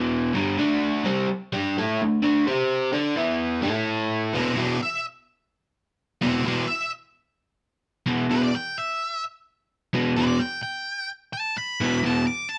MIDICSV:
0, 0, Header, 1, 4, 480
1, 0, Start_track
1, 0, Key_signature, 1, "minor"
1, 0, Tempo, 467290
1, 606, Time_signature, 4, 2, 24, 8
1, 12925, End_track
2, 0, Start_track
2, 0, Title_t, "Lead electric guitar"
2, 0, Program_c, 0, 29
2, 4470, Note_on_c, 0, 67, 75
2, 4486, Note_on_c, 0, 76, 76
2, 4702, Note_off_c, 0, 67, 0
2, 4704, Note_off_c, 0, 76, 0
2, 4717, Note_on_c, 0, 71, 72
2, 4723, Note_on_c, 0, 74, 78
2, 4930, Note_off_c, 0, 71, 0
2, 4942, Note_off_c, 0, 74, 0
2, 4958, Note_on_c, 0, 76, 89
2, 5180, Note_off_c, 0, 76, 0
2, 6386, Note_on_c, 0, 67, 88
2, 6392, Note_on_c, 0, 76, 87
2, 6616, Note_off_c, 0, 76, 0
2, 6622, Note_off_c, 0, 67, 0
2, 6641, Note_on_c, 0, 71, 69
2, 6651, Note_on_c, 0, 74, 76
2, 6853, Note_off_c, 0, 71, 0
2, 6857, Note_off_c, 0, 74, 0
2, 6862, Note_on_c, 0, 76, 93
2, 7093, Note_off_c, 0, 76, 0
2, 8535, Note_on_c, 0, 71, 91
2, 8653, Note_off_c, 0, 71, 0
2, 8663, Note_on_c, 0, 74, 85
2, 8776, Note_off_c, 0, 74, 0
2, 8781, Note_on_c, 0, 79, 83
2, 9012, Note_off_c, 0, 79, 0
2, 9016, Note_on_c, 0, 76, 115
2, 9482, Note_off_c, 0, 76, 0
2, 10441, Note_on_c, 0, 71, 94
2, 10543, Note_off_c, 0, 71, 0
2, 10547, Note_on_c, 0, 74, 76
2, 10674, Note_on_c, 0, 79, 79
2, 10676, Note_off_c, 0, 74, 0
2, 10902, Note_off_c, 0, 79, 0
2, 10915, Note_on_c, 0, 79, 97
2, 11388, Note_off_c, 0, 79, 0
2, 11638, Note_on_c, 0, 81, 94
2, 11876, Note_off_c, 0, 81, 0
2, 11892, Note_on_c, 0, 83, 94
2, 12354, Note_off_c, 0, 83, 0
2, 12390, Note_on_c, 0, 81, 83
2, 12599, Note_off_c, 0, 81, 0
2, 12603, Note_on_c, 0, 86, 94
2, 12828, Note_on_c, 0, 81, 99
2, 12836, Note_off_c, 0, 86, 0
2, 12925, Note_off_c, 0, 81, 0
2, 12925, End_track
3, 0, Start_track
3, 0, Title_t, "Overdriven electric guitar"
3, 0, Program_c, 1, 29
3, 0, Note_on_c, 1, 40, 93
3, 0, Note_on_c, 1, 47, 96
3, 0, Note_on_c, 1, 52, 112
3, 346, Note_off_c, 1, 40, 0
3, 350, Note_on_c, 1, 43, 83
3, 352, Note_off_c, 1, 47, 0
3, 356, Note_on_c, 1, 50, 94
3, 358, Note_off_c, 1, 52, 0
3, 363, Note_on_c, 1, 55, 100
3, 585, Note_off_c, 1, 50, 0
3, 591, Note_off_c, 1, 43, 0
3, 597, Note_off_c, 1, 55, 0
3, 597, Note_on_c, 1, 50, 86
3, 603, Note_on_c, 1, 57, 83
3, 607, Note_on_c, 1, 62, 112
3, 1068, Note_off_c, 1, 50, 0
3, 1072, Note_on_c, 1, 48, 91
3, 1078, Note_off_c, 1, 57, 0
3, 1080, Note_off_c, 1, 62, 0
3, 1084, Note_on_c, 1, 55, 107
3, 1085, Note_on_c, 1, 60, 86
3, 1313, Note_off_c, 1, 48, 0
3, 1319, Note_off_c, 1, 55, 0
3, 1319, Note_off_c, 1, 60, 0
3, 1569, Note_on_c, 1, 55, 94
3, 1576, Note_on_c, 1, 67, 103
3, 1579, Note_on_c, 1, 62, 105
3, 1802, Note_off_c, 1, 55, 0
3, 1805, Note_off_c, 1, 67, 0
3, 1807, Note_off_c, 1, 62, 0
3, 1827, Note_on_c, 1, 57, 90
3, 1830, Note_on_c, 1, 64, 95
3, 1837, Note_on_c, 1, 69, 96
3, 2051, Note_off_c, 1, 57, 0
3, 2052, Note_off_c, 1, 64, 0
3, 2056, Note_off_c, 1, 69, 0
3, 2067, Note_on_c, 1, 50, 63
3, 2075, Note_on_c, 1, 57, 82
3, 2250, Note_off_c, 1, 50, 0
3, 2254, Note_off_c, 1, 57, 0
3, 2283, Note_on_c, 1, 50, 99
3, 2294, Note_on_c, 1, 57, 88
3, 2298, Note_on_c, 1, 62, 103
3, 2520, Note_off_c, 1, 50, 0
3, 2525, Note_off_c, 1, 57, 0
3, 2527, Note_off_c, 1, 62, 0
3, 2535, Note_on_c, 1, 60, 85
3, 2537, Note_on_c, 1, 67, 98
3, 2544, Note_on_c, 1, 72, 94
3, 3006, Note_off_c, 1, 60, 0
3, 3007, Note_off_c, 1, 67, 0
3, 3010, Note_off_c, 1, 72, 0
3, 3011, Note_on_c, 1, 62, 96
3, 3011, Note_on_c, 1, 69, 97
3, 3021, Note_on_c, 1, 74, 115
3, 3244, Note_off_c, 1, 62, 0
3, 3244, Note_off_c, 1, 69, 0
3, 3249, Note_off_c, 1, 74, 0
3, 3250, Note_on_c, 1, 52, 81
3, 3255, Note_on_c, 1, 59, 105
3, 3259, Note_on_c, 1, 64, 95
3, 3717, Note_off_c, 1, 64, 0
3, 3724, Note_off_c, 1, 52, 0
3, 3729, Note_on_c, 1, 64, 101
3, 3731, Note_off_c, 1, 59, 0
3, 3731, Note_on_c, 1, 57, 78
3, 3732, Note_on_c, 1, 69, 95
3, 4445, Note_off_c, 1, 64, 0
3, 4446, Note_off_c, 1, 57, 0
3, 4446, Note_off_c, 1, 69, 0
3, 4450, Note_on_c, 1, 40, 81
3, 4454, Note_on_c, 1, 47, 79
3, 4458, Note_on_c, 1, 52, 90
3, 4644, Note_off_c, 1, 40, 0
3, 4646, Note_off_c, 1, 47, 0
3, 4648, Note_off_c, 1, 52, 0
3, 4677, Note_on_c, 1, 40, 90
3, 4687, Note_on_c, 1, 47, 88
3, 4694, Note_on_c, 1, 52, 92
3, 4878, Note_off_c, 1, 40, 0
3, 4883, Note_off_c, 1, 47, 0
3, 4886, Note_off_c, 1, 52, 0
3, 6383, Note_on_c, 1, 40, 88
3, 6396, Note_on_c, 1, 47, 74
3, 6399, Note_on_c, 1, 52, 87
3, 6572, Note_off_c, 1, 40, 0
3, 6579, Note_off_c, 1, 47, 0
3, 6580, Note_off_c, 1, 52, 0
3, 6618, Note_on_c, 1, 40, 88
3, 6623, Note_on_c, 1, 47, 91
3, 6633, Note_on_c, 1, 52, 104
3, 6810, Note_off_c, 1, 40, 0
3, 6812, Note_off_c, 1, 47, 0
3, 6817, Note_off_c, 1, 52, 0
3, 8282, Note_on_c, 1, 40, 84
3, 8290, Note_on_c, 1, 47, 91
3, 8294, Note_on_c, 1, 52, 93
3, 8482, Note_off_c, 1, 40, 0
3, 8486, Note_off_c, 1, 47, 0
3, 8488, Note_off_c, 1, 52, 0
3, 8522, Note_on_c, 1, 40, 87
3, 8530, Note_on_c, 1, 47, 88
3, 8542, Note_on_c, 1, 52, 91
3, 8722, Note_off_c, 1, 40, 0
3, 8726, Note_off_c, 1, 47, 0
3, 8732, Note_off_c, 1, 52, 0
3, 10205, Note_on_c, 1, 40, 82
3, 10212, Note_on_c, 1, 47, 88
3, 10217, Note_on_c, 1, 52, 93
3, 10402, Note_off_c, 1, 40, 0
3, 10405, Note_off_c, 1, 47, 0
3, 10407, Note_off_c, 1, 52, 0
3, 10455, Note_on_c, 1, 47, 97
3, 10456, Note_on_c, 1, 40, 82
3, 10462, Note_on_c, 1, 52, 111
3, 10646, Note_off_c, 1, 47, 0
3, 10647, Note_off_c, 1, 40, 0
3, 10650, Note_off_c, 1, 52, 0
3, 12124, Note_on_c, 1, 40, 82
3, 12127, Note_on_c, 1, 47, 88
3, 12134, Note_on_c, 1, 52, 90
3, 12318, Note_off_c, 1, 40, 0
3, 12319, Note_off_c, 1, 47, 0
3, 12323, Note_off_c, 1, 52, 0
3, 12356, Note_on_c, 1, 40, 78
3, 12358, Note_on_c, 1, 47, 93
3, 12363, Note_on_c, 1, 52, 82
3, 12553, Note_off_c, 1, 40, 0
3, 12554, Note_off_c, 1, 47, 0
3, 12556, Note_off_c, 1, 52, 0
3, 12925, End_track
4, 0, Start_track
4, 0, Title_t, "Muted overdriven electric guitar strokes"
4, 1327, Note_on_c, 9, 29, 53
4, 1430, Note_off_c, 9, 29, 0
4, 12925, End_track
0, 0, End_of_file